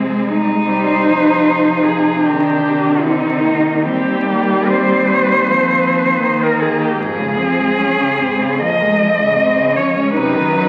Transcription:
Already playing: C3 G#3 C4 G#4
0.28 D#4
0.65 C3 G3 C5
1.07 F3
1.84 G#4
2.25 D#3 D4 G4
2.67 D#3
3.05 C4 D#4
3.45 A#3
3.85 D#2 G3 C4 G4
4.25 A#3
4.66 C4 C5
5.45 F3 C4
6.21 D#3 A#3
6.43 A#4
6.61 G#4
6.82 G4
6.98 F2 G#2 G#3 G#4
7.19 C#3
7.38 F3 C4
7.59 G#3
7.78 F3 C#4
7.99 C#3
8.18 G#2 C4
8.40 C#3
8.59 F2 F3 A#3 D#5
8.81 G#3
8.99 F3 G#3
9.20 C#3
9.36 G#2 C4
9.57 C#3
9.74 F3 C#4 C#5
9.96 G#3
10.14 F#2 C3 D#4 B4
10.35 D#3
10.54 F#3

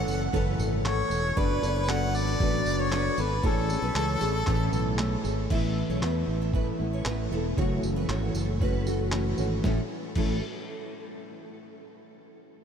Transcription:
Already playing: E3 A3 C#4 A4 F#5
0.07 F#1 A4, tambourine
0.32 F#1 F#2 C#3 E3 A3 C#4 A4 B4, kick
0.59 G#1 A4, tambourine
0.84 E3 A3 C#4 A4 C#5, clap
1.10 E1, tambourine
1.36 F#1 F#3 B3 D4 A4 B4 D5, kick
1.62 F#1 B3 D4 A4, tambourine
1.75 C#5
1.88 F#3 B3 D4 A4 B4 F#5, clap
2.14 G#1 D5, tambourine
2.27 A4
2.40 A1 F#3 B3 D4 A4 B4, kick
2.65 F#1, tambourine
2.79 C#5
2.92 F#3 B3 D4 A4 B4, clap
3.18 G#1 B3 D4 A4 B4, tambourine
3.43 A1 A2 E3 A3 C#4 G#4 A4 C#5, kick
3.69 A3 C#4 G#4, tambourine
3.82 B1 B4
3.95 C#2 E3 A3 C#4 G#4 C#5, clap
4.21 A1 A3 C#4 G#4 A4, tambourine
4.47 A1 A2 E3 A3 C#4 B4, kick, clap
4.73 B1 A4, tambourine
4.98 E3 A3 C#4 G#4, clap
5.24 G#1 A3 C#4 G#4, tambourine
5.50 A1 A2 E3 A3 B3 E4 E5, kick, crash
5.89 B1 C#5
6.02 E2 E3 A3 B3 E4 B4, clap
6.28 A1
6.42 A4
6.53 E3 A3 B3 E4 B4, kick
6.79 A1 A3 B3 E4
6.93 C#5
7.05 A1 E3 A3 B3 E4 B4, clap
7.32 E1 A3 B3 E4 A4
7.57 F#1 F#2 C#3 E3 A3 C#4 F#4 C#5, kick
7.83 F#1, tambourine
7.96 B4
8.09 G#1 E3 A3 C#4 F#4 C#5, clap
8.34 F#1 A4, tambourine
8.60 E3 A3 C#4 F#4 B4, kick
8.87 E3 A3 C#4 F#4 A4, tambourine
9.12 E3 A3 C#4 F#4, clap
9.38 G#1 E3 A3 C#4 F#4, tambourine
9.63 A1 A2 E3 A3 C#4 E4 A4, kick, snare
10.15 A1 A2 E3 A3 C#4 E4 A4, kick, crash

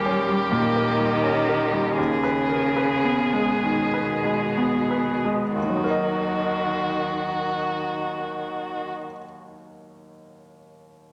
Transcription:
Already playing: D#2 G3 G4 G#4 A#4
0.06 C#4
0.28 G3
0.51 A#2 D#3
0.76 A#4
0.99 G3
1.23 C#4
1.48 A#4
1.73 G3
1.96 D#2 C#3 G#4
2.23 B4
2.50 A#4
2.76 B4
3.04 B3
3.33 G#3
3.63 B2 D#3
3.94 B4
4.25 G#3
4.57 B3
4.91 B4
5.25 G#3
5.55 D#2 D#3 F#4
5.63 D#3
5.70 F#3
5.77 D#4
5.84 A#4
5.91 D#5

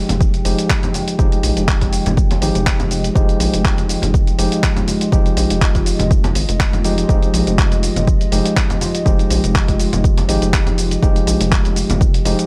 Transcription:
Already playing: F3 G#3 D#4 F4 G4 D#5 G5
0.09 F1, closed hi-hat, low conga, shaker
0.21 kick, shaker
0.34 closed hi-hat, shaker
0.45 F1 F3 G#3 D#4 G4, open hi-hat, shaker
0.58 closed hi-hat, shaker
0.70 kick, clap, shaker
0.83 closed hi-hat, low conga, shaker
0.94 open hi-hat, high conga, shaker
1.08 closed hi-hat, shaker
1.18 F1 F3 G#3 D#4 G4, kick, shaker
1.32 closed hi-hat, shaker
1.43 A#1, open hi-hat, shaker
1.57 F1, closed hi-hat, shaker
1.68 kick, clap, shaker
1.81 kick, closed hi-hat, high conga, shaker
1.93 open hi-hat, shaker
2.06 F1, closed hi-hat, low conga, shaker
2.17 kick, shaker
2.31 closed hi-hat, high conga, shaker
2.41 G#1 F3 G#3 D#4 G4, open hi-hat, shaker
2.55 F1, closed hi-hat, shaker
2.66 kick, clap, shaker
2.80 closed hi-hat, low conga, shaker
2.91 open hi-hat, shaker
3.04 closed hi-hat, shaker
3.15 F1 F3 G#3 D#4 G4, kick, shaker
3.29 closed hi-hat, shaker
3.40 A#1, open hi-hat, shaker
3.54 F1, closed hi-hat, shaker
3.65 kick, clap, shaker
3.78 closed hi-hat, high conga, shaker
3.89 open hi-hat, shaker
4.02 F1, closed hi-hat, low conga, shaker
4.14 kick, shaker
4.27 closed hi-hat, shaker
4.38 F1 F3 G#3 D#4 G4, open hi-hat, shaker
4.52 closed hi-hat, shaker
4.63 kick, clap, shaker
4.76 closed hi-hat, low conga, shaker
4.88 open hi-hat, high conga, shaker
5.01 closed hi-hat, shaker
5.12 F1 F3 G#3 D#4 G4, kick, shaker
5.26 closed hi-hat, shaker
5.37 A#1, open hi-hat, shaker
5.50 F1, closed hi-hat, shaker
5.62 kick, clap, shaker
5.75 kick, closed hi-hat, high conga, shaker
5.86 open hi-hat, shaker
5.99 F1, closed hi-hat, low conga, shaker
6.11 kick, shaker
6.24 closed hi-hat, high conga, shaker
6.35 G#1, open hi-hat, shaker
6.49 F1, closed hi-hat, shaker
6.60 kick, clap, shaker
6.73 closed hi-hat, low conga, shaker
6.84 F3 G#3 D#4 G4, open hi-hat, shaker
6.98 closed hi-hat, shaker
7.09 F1 F3 G#3 D#4 G4, kick, shaker
7.23 closed hi-hat, shaker
7.34 A#1, open hi-hat, shaker
7.47 F1, closed hi-hat, shaker
7.58 kick, clap, shaker
7.71 closed hi-hat, high conga, shaker
7.83 open hi-hat, shaker
7.96 F1, closed hi-hat, low conga, shaker
8.07 kick, shaker
8.21 closed hi-hat, shaker
8.31 F1 F3 G#3 D#4 G4, open hi-hat, shaker
8.46 closed hi-hat, shaker
8.57 kick, clap, shaker
8.70 closed hi-hat, low conga, shaker
8.81 open hi-hat, high conga, shaker
8.95 closed hi-hat, shaker
9.05 F1 F3 G#3 D#4 G4, kick, shaker
9.19 closed hi-hat, shaker
9.30 A#1, open hi-hat, shaker
9.44 F1, closed hi-hat, shaker
9.55 kick, clap, shaker
9.68 kick, closed hi-hat, high conga, shaker
9.80 open hi-hat, shaker
9.93 F1, closed hi-hat, low conga, shaker
10.04 kick, shaker
10.18 closed hi-hat, high conga, shaker
10.28 G#1 F3 G#3 D#4 G4, open hi-hat, shaker
10.42 F1, closed hi-hat, shaker
10.53 kick, clap, shaker
10.66 closed hi-hat, low conga, shaker
10.78 open hi-hat, shaker
10.91 closed hi-hat, shaker
11.02 F1 F3 G#3 D#4 G4, kick, shaker
11.16 closed hi-hat, shaker
11.27 A#1, open hi-hat, shaker
11.40 F1, closed hi-hat, shaker
11.52 kick, clap, shaker
11.65 closed hi-hat, high conga, shaker
11.76 open hi-hat, shaker
11.90 F1, closed hi-hat, low conga, shaker
12.01 kick, shaker
12.14 closed hi-hat, shaker
12.25 F1 F3 G#3 D#4 G4, open hi-hat, shaker
12.39 closed hi-hat, shaker

